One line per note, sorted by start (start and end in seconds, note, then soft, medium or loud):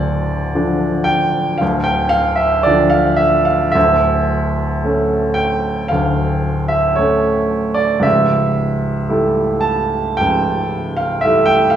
0.00 1.55 D1 medium
0.00 1.57 D2 medium
0.00 1.06 D5 medium
0.55 1.57 D3 soft
0.55 1.57 F3 soft
0.55 1.58 D4 soft
1.04 1.59 G5 medium
1.58 3.71 D1 medium
1.58 3.71 D2 medium
1.58 1.86 F5 medium
1.84 2.12 G5 medium
2.09 2.39 F5 medium
2.36 2.65 E5 medium
2.63 3.70 D3 soft
2.63 3.70 F3 soft
2.63 3.70 D4 soft
2.63 2.92 D5 medium
2.90 3.19 F5 medium
3.16 3.46 E5 medium
3.45 3.73 F5 medium
3.72 5.89 D1 medium
3.72 5.89 D2 medium
3.72 5.37 E5 medium
4.84 5.89 A3 soft
4.84 5.89 C#4 soft
5.34 5.91 G5 medium
5.88 8.00 D1 soft
5.88 8.00 D2 soft
5.88 6.70 F5 medium
6.68 6.97 E5 medium
6.96 8.01 A3 soft
6.96 8.01 C#4 soft
6.96 7.77 C#5 medium
7.74 8.03 D5 medium
7.99 10.14 C#1 medium
7.99 10.13 C#2 medium
7.99 9.63 E5 medium
9.09 10.16 G3 soft
9.09 10.16 A3 soft
9.09 10.17 E4 soft
9.61 10.18 A5 medium
10.17 11.76 C#1 soft
10.17 11.76 C#2 medium
10.17 10.98 G5 medium
10.97 11.23 F5 medium
11.21 11.76 G3 soft
11.21 11.76 A3 soft
11.21 11.48 E5 medium
11.26 11.76 E4 soft
11.46 11.73 G5 medium
11.70 11.76 F5 medium